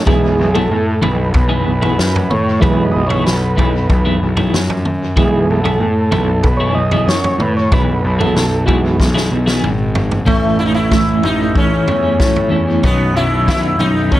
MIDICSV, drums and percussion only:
0, 0, Header, 1, 2, 480
1, 0, Start_track
1, 0, Tempo, 638298
1, 53, Time_signature, 4, 2, 24, 8
1, 10677, End_track
2, 0, Start_track
2, 0, Title_t, "Drums"
2, 52, Note_on_c, 9, 36, 112
2, 52, Note_on_c, 9, 43, 88
2, 127, Note_off_c, 9, 43, 0
2, 128, Note_off_c, 9, 36, 0
2, 416, Note_on_c, 9, 43, 86
2, 491, Note_off_c, 9, 43, 0
2, 771, Note_on_c, 9, 43, 91
2, 846, Note_off_c, 9, 43, 0
2, 1008, Note_on_c, 9, 43, 86
2, 1011, Note_on_c, 9, 36, 107
2, 1083, Note_off_c, 9, 43, 0
2, 1086, Note_off_c, 9, 36, 0
2, 1372, Note_on_c, 9, 43, 86
2, 1447, Note_off_c, 9, 43, 0
2, 1498, Note_on_c, 9, 38, 82
2, 1573, Note_off_c, 9, 38, 0
2, 1622, Note_on_c, 9, 43, 88
2, 1698, Note_off_c, 9, 43, 0
2, 1734, Note_on_c, 9, 47, 81
2, 1809, Note_off_c, 9, 47, 0
2, 1974, Note_on_c, 9, 36, 110
2, 1977, Note_on_c, 9, 43, 93
2, 2049, Note_off_c, 9, 36, 0
2, 2052, Note_off_c, 9, 43, 0
2, 2333, Note_on_c, 9, 43, 83
2, 2408, Note_off_c, 9, 43, 0
2, 2456, Note_on_c, 9, 38, 81
2, 2531, Note_off_c, 9, 38, 0
2, 2693, Note_on_c, 9, 36, 76
2, 2697, Note_on_c, 9, 43, 94
2, 2768, Note_off_c, 9, 36, 0
2, 2772, Note_off_c, 9, 43, 0
2, 2930, Note_on_c, 9, 43, 82
2, 2930, Note_on_c, 9, 47, 79
2, 2931, Note_on_c, 9, 36, 105
2, 3006, Note_off_c, 9, 36, 0
2, 3006, Note_off_c, 9, 43, 0
2, 3006, Note_off_c, 9, 47, 0
2, 3285, Note_on_c, 9, 43, 87
2, 3360, Note_off_c, 9, 43, 0
2, 3415, Note_on_c, 9, 38, 86
2, 3490, Note_off_c, 9, 38, 0
2, 3533, Note_on_c, 9, 43, 89
2, 3608, Note_off_c, 9, 43, 0
2, 3650, Note_on_c, 9, 47, 78
2, 3725, Note_off_c, 9, 47, 0
2, 3886, Note_on_c, 9, 43, 93
2, 3887, Note_on_c, 9, 36, 115
2, 3962, Note_off_c, 9, 36, 0
2, 3962, Note_off_c, 9, 43, 0
2, 4250, Note_on_c, 9, 43, 83
2, 4326, Note_off_c, 9, 43, 0
2, 4601, Note_on_c, 9, 43, 92
2, 4676, Note_off_c, 9, 43, 0
2, 4839, Note_on_c, 9, 43, 83
2, 4843, Note_on_c, 9, 36, 97
2, 4914, Note_off_c, 9, 43, 0
2, 4918, Note_off_c, 9, 36, 0
2, 5199, Note_on_c, 9, 43, 87
2, 5275, Note_off_c, 9, 43, 0
2, 5329, Note_on_c, 9, 38, 77
2, 5404, Note_off_c, 9, 38, 0
2, 5445, Note_on_c, 9, 43, 90
2, 5521, Note_off_c, 9, 43, 0
2, 5564, Note_on_c, 9, 47, 76
2, 5639, Note_off_c, 9, 47, 0
2, 5805, Note_on_c, 9, 43, 89
2, 5806, Note_on_c, 9, 36, 111
2, 5880, Note_off_c, 9, 43, 0
2, 5881, Note_off_c, 9, 36, 0
2, 6171, Note_on_c, 9, 43, 82
2, 6246, Note_off_c, 9, 43, 0
2, 6291, Note_on_c, 9, 38, 81
2, 6366, Note_off_c, 9, 38, 0
2, 6527, Note_on_c, 9, 36, 75
2, 6530, Note_on_c, 9, 43, 93
2, 6602, Note_off_c, 9, 36, 0
2, 6605, Note_off_c, 9, 43, 0
2, 6766, Note_on_c, 9, 36, 102
2, 6770, Note_on_c, 9, 38, 59
2, 6841, Note_off_c, 9, 36, 0
2, 6845, Note_off_c, 9, 38, 0
2, 6895, Note_on_c, 9, 38, 59
2, 6970, Note_off_c, 9, 38, 0
2, 7125, Note_on_c, 9, 38, 69
2, 7200, Note_off_c, 9, 38, 0
2, 7248, Note_on_c, 9, 45, 84
2, 7323, Note_off_c, 9, 45, 0
2, 7484, Note_on_c, 9, 43, 95
2, 7559, Note_off_c, 9, 43, 0
2, 7606, Note_on_c, 9, 43, 92
2, 7681, Note_off_c, 9, 43, 0
2, 7728, Note_on_c, 9, 36, 108
2, 7728, Note_on_c, 9, 43, 84
2, 7803, Note_off_c, 9, 36, 0
2, 7803, Note_off_c, 9, 43, 0
2, 8209, Note_on_c, 9, 36, 97
2, 8209, Note_on_c, 9, 43, 82
2, 8210, Note_on_c, 9, 38, 73
2, 8284, Note_off_c, 9, 36, 0
2, 8284, Note_off_c, 9, 43, 0
2, 8286, Note_off_c, 9, 38, 0
2, 8448, Note_on_c, 9, 43, 82
2, 8523, Note_off_c, 9, 43, 0
2, 8690, Note_on_c, 9, 36, 98
2, 8765, Note_off_c, 9, 36, 0
2, 8931, Note_on_c, 9, 43, 89
2, 9007, Note_off_c, 9, 43, 0
2, 9173, Note_on_c, 9, 36, 106
2, 9174, Note_on_c, 9, 38, 76
2, 9248, Note_off_c, 9, 36, 0
2, 9250, Note_off_c, 9, 38, 0
2, 9296, Note_on_c, 9, 43, 80
2, 9371, Note_off_c, 9, 43, 0
2, 9651, Note_on_c, 9, 43, 84
2, 9654, Note_on_c, 9, 36, 105
2, 9727, Note_off_c, 9, 43, 0
2, 9729, Note_off_c, 9, 36, 0
2, 10137, Note_on_c, 9, 36, 104
2, 10139, Note_on_c, 9, 43, 81
2, 10141, Note_on_c, 9, 38, 78
2, 10212, Note_off_c, 9, 36, 0
2, 10214, Note_off_c, 9, 43, 0
2, 10216, Note_off_c, 9, 38, 0
2, 10380, Note_on_c, 9, 43, 82
2, 10380, Note_on_c, 9, 47, 80
2, 10455, Note_off_c, 9, 43, 0
2, 10455, Note_off_c, 9, 47, 0
2, 10615, Note_on_c, 9, 47, 71
2, 10618, Note_on_c, 9, 36, 105
2, 10677, Note_off_c, 9, 36, 0
2, 10677, Note_off_c, 9, 47, 0
2, 10677, End_track
0, 0, End_of_file